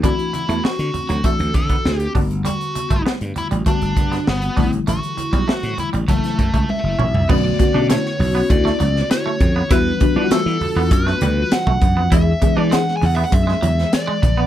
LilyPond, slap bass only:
\new Staff \with { instrumentName = "Slap bass" } { \clef bass \time 4/4 \key b \minor \tempo 4 = 99 d,16 r8 e,16 r16 d16 r16 d,16 r16 d,16 d8 d,8 g,,8~ | g,,16 r8 g,,16 r16 g,16 r16 a,,16 r16 g,,16 g,8 g,,8 a,,8 | a,,16 r8 b,,16 r16 a,16 r16 a,,16 fis,,16 r16 fis,16 cis,16 r16 fis,,16 a,,16 c,16 | b,,8 r16 b,8 r16 b,,8 d,8 cis,8 r8 eis,8 |
e,8 r16 e16 r16 e16 r16 e,16 fis,8 d,8 r16 b,,16 fis,16 eis,16 | e,8 r16 e8 r16 e,8 fis,8 e,8 r8 ais,,8 | }